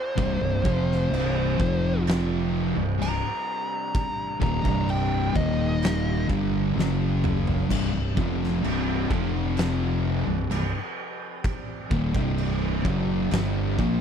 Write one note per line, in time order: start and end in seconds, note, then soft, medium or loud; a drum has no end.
0.00 2.72 C4 medium
0.00 1.56 F4 medium
0.00 2.02 C5 medium
0.00 1.54 D5 medium
0.16 0.39 C1 medium
0.16 0.39 C2 medium
0.16 0.39 G2 loud
0.16 kick loud
0.16 crash medium
0.40 0.62 C1 medium
0.40 0.63 C2 medium
0.40 0.63 G2 medium
0.63 1.08 F1 loud
0.63 1.09 F2 medium
0.63 1.10 C3 medium
0.63 1.10 F3 medium
0.63 kick loud
0.92 snare soft
1.10 1.55 C1 loud
1.10 1.56 C2 medium
1.10 1.57 G2 medium
1.10 1.57 C3 loud
1.10 crash medium
1.58 2.72 F1 medium
1.58 2.74 F2 medium
1.58 2.74 C3 medium
1.58 2.74 F3 loud
1.58 2.76 F3 medium
1.58 2.76 G4 medium
1.58 kick loud
2.07 snare loud
2.07 crash medium
2.76 2.98 C1 medium
2.76 2.99 C2 medium
2.76 2.99 G2 medium
2.76 5.32 C3 medium
2.76 5.32 G3 medium
2.76 5.32 D4 medium
2.99 3.21 C1 medium
2.99 3.23 C2 medium
2.99 3.23 G2 medium
2.99 4.38 A#5 loud
2.99 crash medium
3.95 kick loud
3.95 crash medium
4.40 4.63 D#1 loud
4.40 4.62 D#2 medium
4.40 4.63 A#2 loud
4.40 4.87 A#5 medium
4.40 kick loud
4.63 5.31 C1 loud
4.63 5.33 C2 medium
4.63 5.33 G2 loud
4.63 5.33 C3 medium
4.63 kick loud
4.89 5.34 G5 medium
4.89 crash medium
5.34 6.25 D#1 loud
5.34 6.27 D#2 loud
5.34 6.27 A#2 loud
5.34 6.27 D#3 loud
5.34 6.26 D#5 loud
5.34 kick loud
5.82 snare loud
5.82 crash medium
6.28 6.72 G1 medium
6.28 6.74 G2 medium
6.28 6.74 D3 loud
6.28 6.74 G3 loud
6.28 kick loud
6.75 7.65 F#1 loud
6.75 7.68 F#2 medium
6.75 7.68 C#3 medium
6.75 7.68 F#3 medium
6.79 snare medium
7.24 mid tom loud
7.47 floor tom medium
7.69 7.92 C1 loud
7.69 7.91 C2 medium
7.69 7.91 G2 loud
7.69 9.09 C3 medium
7.69 9.10 G3 medium
7.69 9.10 D4 medium
7.69 kick medium
7.69 crash loud
7.69 crash medium
7.93 8.15 C1 medium
7.93 8.16 C2 medium
7.93 8.16 G2 medium
8.17 8.60 F1 loud
8.17 8.62 F2 medium
8.17 8.62 C3 loud
8.17 8.62 F3 loud
8.17 kick loud
8.44 snare soft
8.63 9.08 C1 loud
8.63 9.09 C2 medium
8.63 9.09 G2 loud
8.63 9.09 C3 loud
8.63 crash medium
9.10 10.23 F1 loud
9.10 10.26 F2 medium
9.10 10.26 C3 loud
9.10 10.26 F3 loud
9.10 10.27 F3 medium
9.10 10.27 C4 medium
9.10 10.26 G4 loud
9.10 kick loud
9.57 snare loud
9.57 crash medium
10.26 10.49 C1 medium
10.26 10.50 C2 medium
10.26 10.50 G2 medium
10.26 14.01 C4 medium
10.26 14.01 D5 medium
10.26 13.99 G5 medium
10.51 10.72 C1 medium
10.51 10.74 C2 medium
10.51 10.74 G2 medium
10.51 crash medium
11.44 kick loud
11.44 crash medium
11.91 12.13 D#1 medium
11.91 12.13 D#2 medium
11.91 12.14 A#2 loud
11.91 kick loud
12.14 12.81 C1 loud
12.14 12.83 C2 medium
12.14 12.83 G2 medium
12.14 12.84 C3 loud
12.14 kick loud
12.38 crash medium
12.83 13.28 F#1 loud
12.83 13.30 F#2 medium
12.83 13.30 C#3 loud
12.83 13.31 F#3 loud
12.83 kick loud
13.30 13.75 G1 loud
13.30 13.76 G2 loud
13.30 13.77 D3 medium
13.30 13.77 G3 loud
13.30 snare loud
13.30 crash medium
13.78 14.01 A#1 medium
13.78 14.01 A#2 medium
13.78 14.01 F3 medium
13.78 14.01 A#3 medium
13.78 kick loud